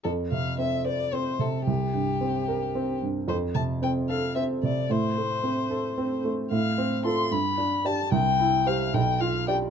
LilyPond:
<<
  \new Staff \with { instrumentName = "Violin" } { \time 6/8 \key f \major \tempo 4. = 74 a'8 f''8 e''8 d''8 c''8 a'8 | g'2~ g'8 r8 | c''8 a''8 g''8 f''8 e''8 d''8 | c''2~ c''8 r8 |
\key g \mixolydian f''4 c'''8 b''4 a''8 | g''4 f''8 g''8 f''8 g''8 | }
  \new Staff \with { instrumentName = "Grand piano" } { \time 6/8 \key f \major f,8 c8 c'8 c''8 c'8 c8 | c,8 g,8 c'8 bes'8 c'8 g,8 | f,8 c8 c'8 a'8 c'8 c8 | a,8 a8 c'8 a'8 c'8 a8 |
\key g \mixolydian a,8 c'8 <f' a'>8 g,8 d'8 <g' d''>8 | c,8 e'8 <g' c''>8 b,,8 f'8 <g' d''>8 | }
>>